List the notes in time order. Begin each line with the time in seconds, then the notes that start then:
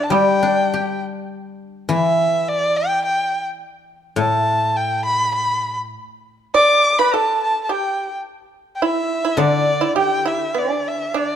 Already playing: D3
0.04 A5
0.10 G3 G4 G5
0.43 D4
0.74 G4
1.89 E3 E5
2.48 D5
2.77 G5
3.05 G5
4.16 A2 A5
4.77 G5
5.05 B5
5.35 B5
6.54 D5 D6
6.99 B4 B5
7.14 A4 A5
7.43 A5
7.64 A5
7.69 G4 G5
8.76 G5
8.82 E4 E5
9.25 E4
9.37 D3 D4 D5
9.81 E4
9.96 G4 G5
10.25 E4 E5
10.54 D4 D5
10.88 E5
11.14 D4 D5